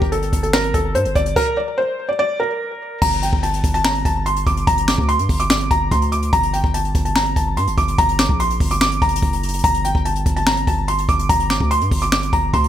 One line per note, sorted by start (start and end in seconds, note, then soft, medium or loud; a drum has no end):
0.00 0.32 G1 loud
0.00 0.11 G4 medium
0.00 kick loud
0.12 0.41 A4 medium
0.12 closed hi-hat medium
0.22 closed hi-hat medium
0.33 0.73 G1 loud
0.33 kick medium
0.33 closed hi-hat medium
0.43 0.53 A4 medium
0.43 closed hi-hat medium
0.53 0.73 A#4 loud
0.53 finger snap medium
0.53 snare loud
0.64 closed hi-hat soft
0.74 0.96 G1 loud
0.74 0.94 A4 medium
0.74 kick medium
0.74 closed hi-hat medium
0.95 1.07 G2 loud
0.95 1.14 C5 medium
0.95 closed hi-hat medium
1.05 1.15 G1 loud
1.05 closed hi-hat medium
1.15 1.35 G1 loud
1.15 1.35 D5 medium
1.15 kick loud
1.15 closed hi-hat medium
1.26 closed hi-hat medium
1.36 1.56 A#4 loud
1.36 kick loud
1.36 crash loud
1.57 1.76 D5 medium
1.78 2.07 C5 medium
2.09 2.18 D5 medium
2.19 2.38 D5 loud
2.40 2.98 A#4 medium
3.02 3.32 G1 loud
3.02 3.21 A#5 loud
3.02 kick loud
3.02 crash loud
3.12 closed hi-hat medium
3.23 3.42 G5 medium
3.23 closed hi-hat medium
3.33 3.63 G1 loud
3.33 kick loud
3.43 3.72 A5 medium
3.43 closed hi-hat medium
3.54 closed hi-hat medium
3.64 4.04 G1 loud
3.64 kick loud
3.64 closed hi-hat medium
3.74 3.84 A5 medium
3.74 closed hi-hat medium
3.85 4.04 A#5 loud
3.85 finger snap loud
3.85 snare loud
3.95 closed hi-hat medium
4.05 4.45 G1 loud
4.05 4.25 A5 medium
4.05 kick loud
4.05 closed hi-hat medium
4.26 4.45 C6 medium
4.26 closed hi-hat medium
4.36 closed hi-hat medium
4.47 4.66 G1 loud
4.47 4.66 D6 medium
4.47 kick loud
4.47 closed hi-hat medium
4.57 closed hi-hat medium
4.67 4.97 G1 loud
4.67 4.87 A#5 loud
4.67 kick loud
4.67 closed hi-hat loud
4.78 closed hi-hat medium
4.88 5.07 D6 medium
4.88 finger snap medium
4.88 snare loud
4.98 5.21 D2 loud
4.98 kick loud
5.09 5.38 C6 medium
5.09 closed hi-hat medium
5.19 5.29 G2 loud
5.19 closed hi-hat medium
5.29 5.69 G1 loud
5.29 kick loud
5.29 open hi-hat medium
5.40 5.49 D6 medium
5.40 closed hi-hat medium
5.50 5.69 D6 medium
5.50 finger snap medium
5.50 snare loud
5.61 closed hi-hat medium
5.71 5.91 G1 loud
5.71 5.90 A#5 medium
5.71 kick loud
5.71 closed hi-hat medium
5.91 6.31 D2 loud
5.91 6.11 C6 medium
5.91 kick medium
5.91 closed hi-hat medium
6.02 closed hi-hat medium
6.12 6.31 D6 medium
6.12 closed hi-hat medium
6.22 closed hi-hat medium
6.33 6.63 G1 loud
6.33 6.52 A#5 loud
6.33 kick loud
6.33 closed hi-hat loud
6.43 closed hi-hat medium
6.54 6.73 G5 medium
6.54 closed hi-hat medium
6.64 6.94 G1 loud
6.64 kick medium
6.74 7.03 A5 medium
6.74 closed hi-hat medium
6.85 closed hi-hat medium
6.95 7.35 G1 loud
6.95 kick loud
6.95 closed hi-hat medium
7.05 7.15 A5 medium
7.05 closed hi-hat medium
7.16 7.35 A#5 loud
7.16 finger snap medium
7.16 snare loud
7.26 closed hi-hat medium
7.36 7.59 G1 loud
7.36 7.56 A5 medium
7.36 kick medium
7.36 closed hi-hat medium
7.57 7.69 G2 loud
7.57 7.76 C6 medium
7.57 closed hi-hat medium
7.67 7.77 G1 loud
7.67 closed hi-hat medium
7.78 7.97 G1 loud
7.78 7.97 D6 medium
7.78 kick loud
7.78 closed hi-hat medium
7.88 closed hi-hat medium
7.98 8.28 G1 loud
7.98 8.18 A#5 loud
7.98 kick loud
7.98 closed hi-hat loud
8.09 closed hi-hat medium
8.19 8.39 D6 medium
8.19 finger snap medium
8.19 snare loud
8.29 8.59 A#1 loud
8.29 kick medium
8.40 8.69 C6 medium
8.40 closed hi-hat medium
8.50 closed hi-hat medium
8.60 9.00 G1 loud
8.60 kick loud
8.60 open hi-hat medium
8.71 8.80 D6 medium
8.71 closed hi-hat medium
8.81 9.01 D6 loud
8.81 finger snap medium
8.81 snare loud
8.91 closed hi-hat medium
9.02 9.22 G1 loud
9.02 9.60 A#5 medium
9.02 kick loud
9.02 closed hi-hat medium
9.09 closed hi-hat medium
9.16 closed hi-hat medium
9.22 9.62 F#1 loud
9.22 kick medium
9.22 closed hi-hat medium
9.33 closed hi-hat medium
9.43 closed hi-hat medium
9.48 closed hi-hat medium
9.54 closed hi-hat medium
9.59 closed hi-hat medium
9.64 9.94 G1 loud
9.64 9.83 A#5 loud
9.64 kick loud
9.64 closed hi-hat loud
9.74 closed hi-hat medium
9.85 10.04 G5 medium
9.85 closed hi-hat medium
9.95 10.25 G1 loud
9.95 kick medium
10.05 10.35 A5 medium
10.05 closed hi-hat medium
10.16 closed hi-hat medium
10.26 10.66 G1 loud
10.26 kick loud
10.26 closed hi-hat medium
10.36 10.46 A5 medium
10.36 closed hi-hat medium
10.47 10.66 A#5 medium
10.47 finger snap medium
10.47 snare loud
10.57 closed hi-hat medium
10.67 11.07 G1 loud
10.67 10.87 A5 medium
10.67 kick loud
10.67 closed hi-hat medium
10.88 11.07 C6 medium
10.88 closed hi-hat medium
10.98 closed hi-hat medium
11.09 11.29 G1 loud
11.09 11.28 D6 medium
11.09 kick loud
11.09 closed hi-hat medium
11.19 closed hi-hat medium
11.29 11.59 G1 loud
11.29 11.49 A#5 loud
11.29 kick loud
11.29 closed hi-hat loud
11.40 closed hi-hat medium
11.50 11.69 D6 medium
11.50 finger snap medium
11.50 snare loud
11.60 11.83 D2 loud
11.60 kick medium
11.71 12.00 C6 medium
11.71 closed hi-hat medium
11.81 11.91 G2 loud
11.81 closed hi-hat medium
11.91 12.31 G1 loud
11.91 kick loud
11.91 open hi-hat medium
12.02 12.11 D6 medium
12.02 closed hi-hat medium
12.12 12.32 D6 medium
12.12 finger snap medium
12.12 snare loud
12.23 closed hi-hat medium
12.33 12.53 G1 loud
12.33 12.52 A#5 medium
12.33 kick loud
12.33 closed hi-hat medium
12.54 12.68 D2 loud
12.54 12.68 C6 medium
12.54 kick medium
12.54 closed hi-hat medium
12.64 closed hi-hat medium